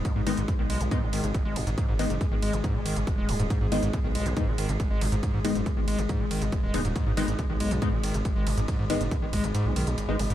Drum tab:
RD |x-x-x-x-x-x-x-x-|x-x-x-x-x-x-x-x-|x-x-x-x-x-x-x-x-|x-x-x-x-x-x-x-x-|
HH |x-oxx-oxx-oxx-ox|x-oxx-oxx-oxx-ox|x-oxx-oxx-oxx-ox|x-oxx-oxx-oxx-ox|
BD |o---o---o---o---|o---o---o---o---|o---o---o---o---|o---o---o---o---|

RD |x-x-x-x-x-x-x-x-|x-x-x-x-x-x-x-x-|
HH |x-oxx-oxx-oxx-ox|x-oxx-oxx-oxx-ox|
BD |o---o---o---o---|o---o-o---------|